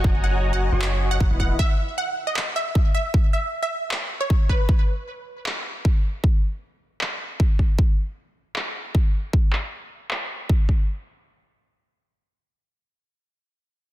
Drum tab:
CP |----x---|----x---|----x---|----x---|
BD |o-----oo|o-----o-|o-----oo|o-----o-|

CP |----x---|----x---|-x--x---|--------|
BD |o-----oo|o-----o-|o-----oo|--------|

CP |--------|
BD |--------|